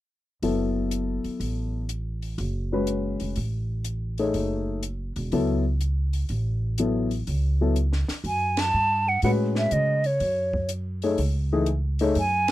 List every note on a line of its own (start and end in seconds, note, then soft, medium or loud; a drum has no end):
0.42 1.21 F#1 medium
0.42 1.80 F#3 medium
0.42 1.80 B3 soft
0.42 1.80 E4 soft
0.42 1.81 A4 medium
0.42 open hi-hat soft
0.91 closed hi-hat soft
1.24 muted upright bass stroke soft
1.24 open hi-hat soft
1.40 2.34 A1 medium
1.40 open hi-hat soft
1.89 closed hi-hat soft
2.22 open hi-hat soft
2.38 3.16 F#1 medium
2.38 open hi-hat soft
2.72 3.34 G#3 soft
2.72 3.34 C#4 soft
2.72 3.34 F#4 soft
2.72 3.34 B4 medium
2.87 closed hi-hat soft
3.20 3.36 F1 medium
3.20 open hi-hat soft
3.36 4.30 A1 medium
3.36 open hi-hat soft
3.84 closed hi-hat soft
4.18 4.80 A3 medium
4.18 4.81 D#4 medium
4.18 4.80 G#4 soft
4.18 4.81 C#5 medium
4.18 open hi-hat soft
4.34 5.12 F#1 medium
4.34 open hi-hat soft
4.83 closed hi-hat soft
5.16 5.31 E1 medium
5.16 open hi-hat soft
5.32 6.26 C#2 medium
5.32 5.62 F#3 medium
5.32 5.62 B3 medium
5.32 5.62 E4 medium
5.32 5.62 A4 medium
5.32 open hi-hat soft
5.81 closed hi-hat soft
6.13 open hi-hat soft
6.29 7.23 A1 medium
6.29 open hi-hat soft
6.78 7.08 F#3 medium
6.78 7.08 B3 soft
6.78 7.09 E4 soft
6.78 7.09 A4 medium
6.78 closed hi-hat soft
7.11 open hi-hat soft
7.27 8.05 C#2 medium
7.27 open hi-hat soft
7.61 7.75 F#3 medium
7.61 7.75 B3 soft
7.61 7.75 E4 soft
7.61 7.75 A4 medium
7.76 closed hi-hat soft
7.93 snare soft
8.08 muted upright bass stroke soft
8.08 snare soft
8.08 open hi-hat soft
8.24 8.70 F#2 medium
8.24 8.62 G#5 medium
8.24 open hi-hat soft
8.57 9.10 A5 loud
8.57 snare medium
8.57 ride medium
8.74 9.19 G2 medium
9.09 9.23 F#5 medium
9.22 9.68 A2 medium
9.22 9.98 G#3 medium
9.22 9.99 C#4 soft
9.22 9.99 F#4 medium
9.22 9.99 B4 medium
9.22 9.31 F#5 medium
9.22 open hi-hat soft
9.55 9.74 E5 medium
9.55 snare soft
9.71 10.17 C#3 medium
9.71 10.08 D#5 medium
9.71 closed hi-hat soft
10.04 10.70 C#5 medium
10.04 open hi-hat soft
10.20 11.14 F#2 medium
10.20 open hi-hat soft
10.53 kick soft
10.69 closed hi-hat medium
11.02 11.17 A3 medium
11.02 11.17 D#4 medium
11.02 11.17 G#4 medium
11.02 11.17 C#5 medium
11.02 open hi-hat soft
11.18 12.12 C#2 medium
11.18 open hi-hat soft
11.53 11.66 E3 medium
11.53 11.66 A3 medium
11.53 11.66 D#4 medium
11.53 11.66 G#4 medium
11.66 closed hi-hat soft
11.99 12.15 A3 medium
11.99 12.15 D#4 medium
11.99 12.15 G#4 medium
11.99 12.15 C#5 medium
11.99 open hi-hat soft
12.15 12.51 F#2 medium
12.15 12.51 G#5 loud
12.15 open hi-hat soft
12.48 ride medium